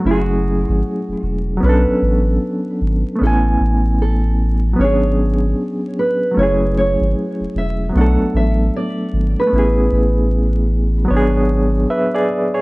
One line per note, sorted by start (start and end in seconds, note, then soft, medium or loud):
0.00 1.56 F#3 medium
0.00 1.58 A3 medium
0.05 0.65 F#1 loud
0.05 1.60 C#4 medium
0.05 1.61 E4 soft
0.05 1.64 F#4 medium
0.11 1.63 G#4 medium
0.69 0.82 G#1 loud
1.08 1.14 E1 soft
1.23 1.59 E1 medium
1.57 3.15 F#3 medium
1.57 3.16 B3 medium
1.63 1.85 B1 loud
1.63 3.18 C#4 medium
1.63 3.19 D4 medium
1.63 3.17 B4 medium
1.69 3.21 A4 medium
1.87 1.93 A1 soft
2.02 2.38 A1 loud
2.81 3.03 G#1 medium
3.16 4.73 A3 medium
3.16 4.74 B3 medium
3.21 3.57 A1 loud
3.21 4.76 C#4 medium
3.21 4.77 E4 medium
3.21 3.97 A4 medium
3.27 4.79 G#5 medium
3.60 4.75 A1 medium
4.02 4.80 A4 medium
4.73 6.30 F#3 medium
4.73 6.32 B3 medium
4.79 5.53 G#1 loud
4.79 6.33 C#4 medium
4.79 6.35 D4 medium
4.79 5.99 C#5 medium
4.85 6.36 G#4 medium
5.99 6.38 B4 medium
6.31 7.88 F#3 medium
6.31 7.90 A3 medium
6.37 6.96 F#1 loud
6.37 7.91 C#4 medium
6.37 7.93 E4 medium
6.37 6.77 C#5 medium
6.43 7.94 G#4 medium
6.78 7.58 C#5 loud
7.01 7.14 G#1 medium
7.40 7.46 E1 soft
7.55 7.91 E1 medium
7.55 7.93 E5 loud
7.89 9.46 F#3 medium
7.89 9.48 B3 medium
7.95 8.17 B1 loud
7.95 9.46 A3 medium
7.95 9.51 D4 medium
7.95 8.36 F#5 loud
8.01 9.52 A4 medium
8.19 8.25 A1 soft
8.34 8.70 A1 loud
8.34 8.76 E5 medium
8.76 9.39 D5 loud
9.13 9.35 G#1 medium
9.40 10.92 B4 medium
9.47 11.04 A3 medium
9.47 11.06 B3 medium
9.52 9.88 A1 loud
9.52 11.07 C#4 medium
9.52 11.09 E4 medium
9.59 11.10 G#4 medium
9.92 11.06 A1 medium
11.05 12.62 F#3 medium
11.05 12.62 B3 medium
11.10 11.85 G#1 loud
11.10 12.62 D4 medium
11.10 12.53 C#5 medium
11.17 11.91 G#4 medium
11.90 12.13 B4 medium
11.90 12.13 E5 medium
12.15 12.52 G#4 medium
12.15 12.52 D5 medium
12.54 12.62 G#4 medium
12.54 12.62 C#5 medium